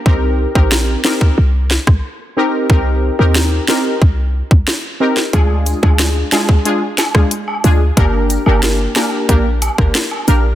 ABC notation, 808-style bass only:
X:1
M:4/4
L:1/16
Q:1/4=91
K:Cm
V:1 name="808-style bass" clef=bass
C,,3 B,,,3 z2 C,,3 C,, z4 | C,,3 E,,3 z2 C,,3 C,, z4 | D,,3 D,,3 z8 D,,2 | G,,,3 G,,,3 z2 B,,,3 G,,, z2 B,,,2 |]